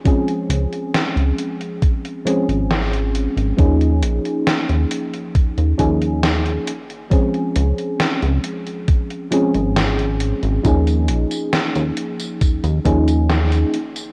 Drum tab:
HH |xxxxxxxxxxxxxxxx|xxxxxxxxxxxxxxxx|xxxxxxxxxxxxxxxx|xxxxxxxxxxxxxxxx|
TB |----------------|----------------|----------------|xx-xxx-xxx-xxx-x|
SD |----o-------o---|----o-------o---|----o-------o---|----o-------o---|
BD |o-------o-------|o-------o-o-----|o-------o-------|o-------o-o-----|